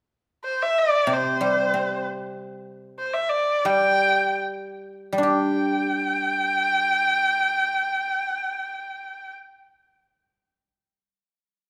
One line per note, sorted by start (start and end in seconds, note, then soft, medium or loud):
0.44 0.64 C5 medium
0.62 0.80 E5 medium
0.78 1.15 D5 medium
1.07 2.98 C3 soft
1.13 2.06 C5 medium
1.41 2.67 G3 soft
1.74 3.00 C4 soft
2.99 3.15 C5 medium
3.14 3.31 E5 medium
3.29 3.67 D5 medium
3.65 5.11 G3 soft
3.65 4.40 G5 medium
5.13 11.19 G3 soft
5.18 9.94 D4 soft
5.23 9.34 G4 soft
5.23 9.32 G5 medium